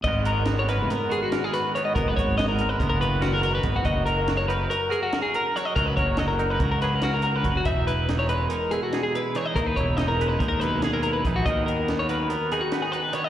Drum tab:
HH |xxxxxxxxx|xxxxxxxxx|xxxxxxxxx|xxxxxxxxx|
SD |--ooo-oo-|--o---oo-|--o---o-o|--o--oo--|
BD |o--------|oo--o---o|o--------|oo--o---o|

HH |xxxxxxxxx|xxxxxxxxx|xxxxxxxxx|
SD |--o---o-o|--o--oo--|--o---o-o|
BD |o--------|oo--o---o|o--------|